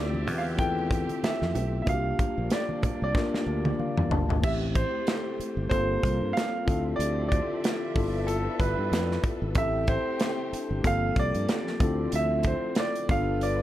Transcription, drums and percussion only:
0.14 muted conga soft
0.14 high conga medium
0.27 open hi-hat soft
0.27 low conga medium
0.58 kick medium
0.58 closed hi-hat medium
0.78 muted conga soft
0.91 kick medium
0.91 closed hi-hat medium
1.09 closed hi-hat soft
1.09 high conga medium
1.23 snare loud
1.23 closed hi-hat medium
1.23 muted conga soft
1.23 high conga medium
1.42 snare soft
1.42 muted conga soft
1.42 high conga medium
1.55 closed hi-hat medium
1.55 low conga medium
1.86 kick loud
1.86 closed hi-hat medium
1.86 muted conga soft
1.86 low conga medium
2.05 muted conga soft
2.19 kick medium
2.19 closed hi-hat medium
2.50 snare loud
2.50 closed hi-hat medium
2.50 muted conga soft
2.69 high conga medium
2.83 kick medium
2.83 closed hi-hat medium
2.83 low conga medium
3.15 kick loud
3.15 snare medium
3.15 muted conga soft
3.34 snare medium
3.34 muted conga soft
3.65 high tom medium
3.65 high conga medium
3.79 muted conga soft
3.79 high conga medium
3.97 mid tom medium
3.97 muted conga soft
3.97 high conga medium
4.11 floor tom loud
4.11 low conga medium
4.30 floor tom medium
4.44 kick loud
4.44 crash medium
4.75 kick medium
4.75 closed hi-hat medium
5.07 snare loud
5.07 closed hi-hat medium
5.41 closed hi-hat medium
5.71 kick medium
5.71 closed hi-hat medium
6.03 kick medium
6.03 closed hi-hat medium
6.37 snare loud
6.37 closed hi-hat medium
6.68 kick loud
6.68 closed hi-hat medium
7.00 closed hi-hat medium
7.32 kick medium
7.32 closed hi-hat medium
7.64 snare loud
7.64 closed hi-hat medium
7.96 kick loud
7.96 open hi-hat medium
8.28 closed hi-hat medium
8.60 kick medium
8.60 closed hi-hat medium
8.93 snare medium
8.93 closed hi-hat medium
9.11 snare soft
9.24 kick loud
9.24 closed hi-hat medium
9.55 kick loud
9.55 closed hi-hat medium
9.87 kick loud
9.87 closed hi-hat medium
10.20 snare loud
10.20 closed hi-hat medium
10.53 closed hi-hat medium
10.84 kick medium
10.84 closed hi-hat medium
11.16 kick medium
11.16 closed hi-hat medium
11.35 closed hi-hat soft
11.49 snare medium
11.49 closed hi-hat medium
11.67 snare soft
11.80 kick loud
11.80 closed hi-hat medium
12.12 closed hi-hat medium
12.43 kick medium
12.43 closed hi-hat medium
12.75 snare loud
12.75 closed hi-hat medium
12.96 closed hi-hat soft
13.09 kick loud
13.09 closed hi-hat medium
13.41 closed hi-hat medium

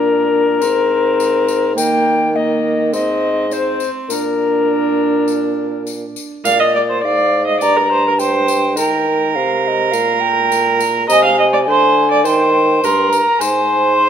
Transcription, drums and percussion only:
0.62 tambourine soft
1.20 tambourine soft
1.48 tambourine soft
1.78 tambourine medium
2.93 tambourine soft
3.51 tambourine soft
3.80 tambourine soft
4.10 tambourine medium
5.28 tambourine soft
5.87 tambourine soft
6.16 tambourine soft
6.45 tambourine medium
7.61 tambourine soft
8.19 tambourine soft
8.48 tambourine medium
8.77 tambourine medium
9.93 tambourine medium
10.52 tambourine medium
10.80 tambourine medium
11.10 tambourine medium
12.25 tambourine soft
12.84 tambourine soft
13.13 tambourine soft
13.41 tambourine medium

